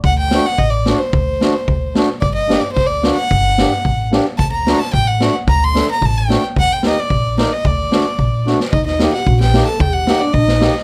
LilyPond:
<<
  \new Staff \with { instrumentName = "Violin" } { \time 2/4 \tempo 4 = 111 fis''16 g''8 fis''16 ees''16 d''8 c''16~ | c''4. r8 | d''16 ees''8 d''16 c''16 d''8 fis''16~ | fis''4. r8 |
a''16 bes''8 a''16 g''16 fis''8 r16 | bes''16 c'''8 bes''16 a''16 g''8 r16 | fis''16 g''16 ees''16 d''8. d''16 ees''16 | d''4. r8 |
ees''16 ees''8 fis''8 g''8 a''16 | g''16 fis''8 d''16 ees''8. r16 | }
  \new Staff \with { instrumentName = "Clarinet" } { \time 2/4 r2 | r2 | r2 | r2 |
r2 | r2 | r2 | r2 |
ees'16 ees'8 fis'32 g'32 fis'16 g'8 a'16 | g'8. d'16 ees'8. r16 | }
  \new Staff \with { instrumentName = "Accordion" } { \time 2/4 r8 <a d' fis'>16 r8. <a d' fis'>16 r16 | r8 <a d' fis'>16 r8. <a d' fis'>16 r16 | r8 <bes d' g'>16 r8. <bes d' fis'>16 r16 | r8 <bes d' g'>16 r8. <bes d' g'>16 r16 |
r8 <a d' fis'>16 r8. <a d' fis'>16 r16 | r8 <a d' a'>16 r8. <a d' fis'>16 r16 | r8 <bes ees' g'>16 r8. <bes ees' bes'>16 r16 | r8 <a d' fis'>16 r8. <a d' fis'>16 r16 |
r8 <bes ees' g'>16 r8. <bes ees' g'>16 r16 | r8 <bes ees' g'>16 r8. <bes ees' g'>16 r16 | }
  \new Staff \with { instrumentName = "Upright bass" } { \clef bass \time 2/4 d,4 a,,4 | d,4 d,4 | g,,4 d,4 | g,,4 a,,4 |
d,4 a,,4 | d,4 a,,4 | ees,4 bes,,4 | d,4 bes,,4 |
ees,4 bes,,4 | ees,4 bes,,4 | }
  \new DrumStaff \with { instrumentName = "Drums" } \drummode { \time 2/4 bd8 sn16 sn16 bd8 sn8 | bd8 sn8 bd8 sn8 | bd8 sn8 <bd sn>8 sn8 | bd8 sn8 bd8 sn8 |
bd8 sn16 sn16 bd8 sn8 | bd8 sn8 bd8 sn8 | bd8 sn8 bd8 sn8 | bd8 sn8 bd8 sn16 sn16 |
bd16 sn16 sn16 sn16 bd16 sn16 sn8 | bd8 sn8 bd16 sn16 sn16 sn16 | }
>>